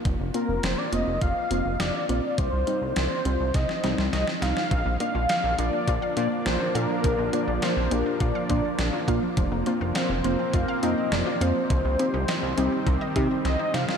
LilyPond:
<<
  \new Staff \with { instrumentName = "Analog synth lead" } { \time 4/4 \key bes \major \tempo 4 = 103 r8 bes'8 c''16 d''16 ees''8 f''4 d''4 | c''4 c''4 ees''4 ees''8 f''8~ | f''8 f''4 d''4 d''8 c''8 bes'8~ | bes'8 d''8 c''8 bes'8 d''4. r8 |
r4 c''4 f''8 ees''8 d''8 c''8~ | c''2~ c''8 r8 ees''8 f''8 | }
  \new Staff \with { instrumentName = "Synth arpeggio sound" } { \time 4/4 \key bes \major r1 | r1 | f16 bes16 d'16 f'16 f''16 r16 bes16 d'16 f'16 f''16 f16 r16 d'16 f'16 f''16 f16 | f16 bes16 d'16 f'16 f''16 r16 bes16 d'16 f'16 f''16 f16 r16 d'16 f'16 f''16 f16 |
f16 bes16 c'16 f'16 f''16 r16 bes16 c'16 f'16 f''16 f16 r16 c'16 f'16 f''16 f16 | ees16 g16 c'16 ees'16 ees''16 r16 g16 c'16 ees'16 ees''16 ees16 r16 c'16 ees'16 ees''16 ees16 | }
  \new Staff \with { instrumentName = "Synth pluck" } { \time 4/4 \key bes \major r8 <bes c' f'>16 r8. <bes c' f'>16 r8. <bes c' f'>16 r8. <bes c' f'>16 r16 | r8 <g c' ees'>16 r8. <g c' f'>16 r8. <g c' ees'>16 r8. <g c' ees'>16 r16 | r8 <bes d' f'>16 r8. <bes d' f'>16 r8. <bes d' f'>16 r8. <bes d' f'>16 r16 | r8 <bes d' f'>16 r8. <bes d' g'>16 r8. <bes d' f'>16 r8. <bes d' f'>16 r16 |
r8 <bes c' f'>16 r8. <bes c' f'>16 r8. <bes c' ees'>16 r8. <bes c' f'>16 r16 | r8 <c' ees' g'>16 r8. <c' ees' g'>16 r8. <c' ees' g'>16 r8. <c' ees' g'>16 r16 | }
  \new Staff \with { instrumentName = "Analog synth pad" } { \time 4/4 \key bes \major << { r1 | r1 | <bes d'>1~ | <bes d'>1 |
<bes c'>1 | <g c'>1 | } \\ { r1 | r1 | f1~ | f1~ |
f1 | ees1 | } >> }
  \new Staff \with { instrumentName = "Analog synth bass" } { \clef bass \time 4/4 \key bes \major f,,16 f,,16 r16 f,,16 f,,16 r16 f,,16 f,,16 f,,16 r16 f,,16 f,,16 f,,16 r16 bes,,16 r16 | c,16 c,16 r16 c,16 c,16 r16 c,16 c,16 c,16 r16 c,16 c,16 c,16 r16 c,16 r16 | bes,,16 bes,,16 r16 bes,,16 r16 bes,,16 bes,,16 r16 bes,,16 r16 bes,16 r16 bes,,16 r16 bes,16 r16 | bes,,16 bes,,16 r16 bes,,16 r16 bes,,16 bes,,16 r16 bes,,16 r16 bes,16 r16 bes,,16 r16 bes,16 r16 |
f,,16 f,,16 r16 f,,16 r16 f,,16 f,,16 r16 f,,16 r16 f,16 r16 f,,16 r16 f,16 r16 | c,16 c,16 r16 c,16 r16 c,16 c,16 r16 c,16 r16 c16 r16 c,16 r16 c16 r16 | }
  \new DrumStaff \with { instrumentName = "Drums" } \drummode { \time 4/4 <hh bd>8 hh8 <hh sn>8 hh8 <hh bd>8 hh8 <hh sn>8 hh8 | <hh bd>8 hh8 <hh sn>8 hh8 <hh bd sn>16 sn16 <hh sn>16 sn16 <hh sn>16 sn16 <hh sn>16 sn16 | <hh bd>8 hh8 <hh sn>8 hh8 <hh bd>8 hh8 <hh sn>8 hh8 | <hh bd>8 hh8 <hh sn>8 hh8 <hh bd>8 <hh bd>8 <hh sn>8 <hh bd>8 |
<hh bd>8 hh8 <hh sn>8 hh8 <hh bd>8 hh8 <hh sn>8 hh8 | <hh bd>8 hh8 <hh sn>8 hh8 <hh bd>8 <hh bd>8 <hh sn>8 <hh sn>16 sn16 | }
>>